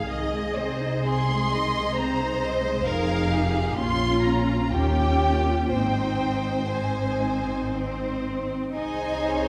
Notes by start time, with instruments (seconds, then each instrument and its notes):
Already playing: viola section G#4, violin section F5
0.08 double bass section C2, cello section C3, viola section D#3, violin section D#5
0.31 viola section G#3
0.56 viola section C4, violin section C5
0.79 viola section D#4
1.03 viola section C4, violin section G#4 C6
1.28 viola section G#3
1.51 viola section D#3, violin section D#5
1.75 viola section G#3
1.96 viola section C4, violin section C5 A#5
2.21 viola section D#4
2.42 viola section C4, violin section D#5
2.64 viola section G#3
2.86 double bass section F1, cello section F2, viola section D#4 G#4, violin section A#4 F5
3.33 viola section G4, violin section G#4
3.77 double bass section A#1, cello section A#2, viola section C#4 F4, violin section F4 C6
4.24 violin section A#5
4.72 cello section D#2, double bass section D#2, viola section C#4 F4, violin section G4 G5
5.70 cello section G#2, viola section C4 D#4, violin section C5 G5
5.74 double bass section G#1
6.73 viola section C4 D#4, violin section G#5
7.74 cello section C4, violin section C5
8.74 double bass section C2, cello section D#4, viola section G#4 D#5, violin section C5 D#5 G#5
9.21 viola section C#5